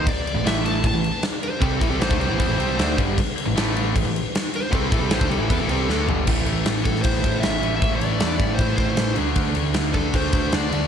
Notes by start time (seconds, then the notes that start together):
0.07 D5, kick, crash
0.27 crash
0.34 A1 A2 E3
0.43 A1 A2 E3 A3 E5, crash
0.47 snare
0.65 A5, crash
0.83 A1 A2 E3, kick, crash
0.87 A5
0.93 A1 A2 E3
1.04 crash
1.23 snare, crash
1.43 C5, crash
1.60 C2 C3 G3 C4 A4, kick, crash
1.80 A1 A2 E3, kick, crash
1.90 C2 C3 G3
1.99 A1 A2 E3 C5, snare, crash
2.09 D2 D3 A3, kick
2.19 C2 C3 G3 C5, crash
2.28 A1 A2 E3
2.38 E2 E3 B3, kick, crash
2.47 A1 A2 E3
2.57 C2 C3 G3 C4, crash
2.78 D2 D3 A3 D4, snare, crash
2.96 G1 G2 D3 G3, kick, crash
3.18 kick, crash
3.38 crash
3.46 A1 A2 E3
3.55 A1 A2 E3 A3, snare, crash
3.76 crash
3.94 A1 A2 E3, kick, crash
4.04 A1 A2 E3
4.16 crash
4.35 snare, crash
4.54 C5, crash
4.71 C2 C3 G3 C4 A4, kick, crash
4.91 A1 A2 E3, kick, crash
5.00 C2 C3 G3
5.10 A1 A2 E3 C5, snare, crash
5.20 D2 D3 A3, kick
5.30 C2 C3 G3 A4, crash
5.39 A1 A2 E3
5.50 E2 E3 B3, kick, crash
5.60 A1 A2 E3
5.69 C2 C3 G3 C4, crash
5.89 D2 D3 A3 D4, snare
6.07 G1 G2 D3 G3, floor tom
6.26 A1 A2 E3 A3, kick, crash
6.46 A1, crash
6.66 A1, snare, crash
6.84 A1 A4, kick, crash
6.95 snare
7.02 A1 A2 E3 C5, kick, crash
7.06 A3
7.24 A1, kick, crash
7.40 A1 E5, snare, crash
7.62 A1 A2 E3 A3, crash
7.76 E5
7.80 A1 A2 E3 A3, kick, crash
7.96 D5
8.01 A1, crash
8.20 E2, snare, crash
8.39 A1, kick, crash
8.55 A2 C5, crash
8.59 A1 E3 A3, kick
8.76 A1 C5, kick, snare, crash
8.97 A1, snare, crash
9.15 D2 D3 A3 D4, crash
9.35 D2, kick, crash
9.55 D2, crash
9.74 D2, snare, crash
9.93 D2 D3 A3 D4 A4, kick, crash
10.14 D2 C5, kick, crash
10.32 D2, kick, crash
10.52 D2 D3 A3 D4 D5, snare, crash
10.70 D2 D3 A3 D4, crash